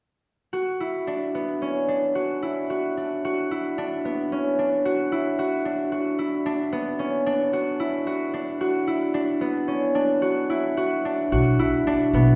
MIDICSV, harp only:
0, 0, Header, 1, 2, 480
1, 0, Start_track
1, 0, Key_signature, 2, "minor"
1, 0, Tempo, 538600
1, 470, Time_signature, 5, 2, 24, 8
1, 8624, Tempo, 545951
1, 10978, End_track
2, 0, Start_track
2, 0, Title_t, "Harp"
2, 0, Program_c, 0, 46
2, 471, Note_on_c, 0, 66, 53
2, 716, Note_on_c, 0, 64, 44
2, 956, Note_on_c, 0, 62, 52
2, 1201, Note_on_c, 0, 59, 43
2, 1442, Note_on_c, 0, 61, 47
2, 1495, Note_off_c, 0, 62, 0
2, 1679, Note_on_c, 0, 62, 47
2, 1733, Note_off_c, 0, 61, 0
2, 1914, Note_off_c, 0, 66, 0
2, 1918, Note_on_c, 0, 66, 53
2, 2157, Note_off_c, 0, 64, 0
2, 2161, Note_on_c, 0, 64, 51
2, 2402, Note_off_c, 0, 66, 0
2, 2405, Note_on_c, 0, 66, 49
2, 2646, Note_off_c, 0, 62, 0
2, 2649, Note_on_c, 0, 62, 44
2, 2890, Note_off_c, 0, 66, 0
2, 2893, Note_on_c, 0, 66, 58
2, 3126, Note_off_c, 0, 64, 0
2, 3129, Note_on_c, 0, 64, 45
2, 3365, Note_off_c, 0, 62, 0
2, 3368, Note_on_c, 0, 62, 60
2, 3606, Note_off_c, 0, 59, 0
2, 3610, Note_on_c, 0, 59, 49
2, 3851, Note_on_c, 0, 61, 51
2, 3904, Note_off_c, 0, 62, 0
2, 4088, Note_on_c, 0, 62, 48
2, 4141, Note_off_c, 0, 61, 0
2, 4322, Note_off_c, 0, 66, 0
2, 4325, Note_on_c, 0, 66, 53
2, 4559, Note_off_c, 0, 64, 0
2, 4562, Note_on_c, 0, 64, 53
2, 4798, Note_off_c, 0, 66, 0
2, 4802, Note_on_c, 0, 66, 57
2, 5034, Note_off_c, 0, 62, 0
2, 5037, Note_on_c, 0, 62, 50
2, 5271, Note_off_c, 0, 66, 0
2, 5275, Note_on_c, 0, 66, 58
2, 5509, Note_off_c, 0, 64, 0
2, 5513, Note_on_c, 0, 64, 46
2, 5752, Note_off_c, 0, 62, 0
2, 5755, Note_on_c, 0, 62, 58
2, 5989, Note_off_c, 0, 59, 0
2, 5993, Note_on_c, 0, 59, 53
2, 6230, Note_on_c, 0, 61, 55
2, 6284, Note_off_c, 0, 62, 0
2, 6474, Note_on_c, 0, 62, 60
2, 6527, Note_off_c, 0, 61, 0
2, 6708, Note_off_c, 0, 66, 0
2, 6712, Note_on_c, 0, 66, 56
2, 6945, Note_off_c, 0, 64, 0
2, 6948, Note_on_c, 0, 64, 55
2, 7186, Note_off_c, 0, 66, 0
2, 7190, Note_on_c, 0, 66, 58
2, 7425, Note_off_c, 0, 62, 0
2, 7429, Note_on_c, 0, 62, 52
2, 7666, Note_off_c, 0, 66, 0
2, 7670, Note_on_c, 0, 66, 58
2, 7904, Note_off_c, 0, 64, 0
2, 7908, Note_on_c, 0, 64, 52
2, 8142, Note_off_c, 0, 62, 0
2, 8146, Note_on_c, 0, 62, 59
2, 8382, Note_off_c, 0, 59, 0
2, 8386, Note_on_c, 0, 59, 50
2, 8625, Note_on_c, 0, 61, 50
2, 8677, Note_off_c, 0, 62, 0
2, 8863, Note_on_c, 0, 62, 55
2, 8916, Note_off_c, 0, 61, 0
2, 9096, Note_off_c, 0, 66, 0
2, 9100, Note_on_c, 0, 66, 57
2, 9341, Note_off_c, 0, 64, 0
2, 9344, Note_on_c, 0, 64, 51
2, 9583, Note_off_c, 0, 66, 0
2, 9587, Note_on_c, 0, 66, 57
2, 9828, Note_off_c, 0, 62, 0
2, 9832, Note_on_c, 0, 62, 50
2, 10065, Note_off_c, 0, 66, 0
2, 10069, Note_on_c, 0, 66, 68
2, 10304, Note_off_c, 0, 64, 0
2, 10308, Note_on_c, 0, 64, 54
2, 10548, Note_off_c, 0, 62, 0
2, 10551, Note_on_c, 0, 62, 64
2, 10788, Note_off_c, 0, 59, 0
2, 10791, Note_on_c, 0, 59, 57
2, 10978, Note_off_c, 0, 59, 0
2, 10978, Note_off_c, 0, 62, 0
2, 10978, Note_off_c, 0, 64, 0
2, 10978, Note_off_c, 0, 66, 0
2, 10978, End_track
0, 0, End_of_file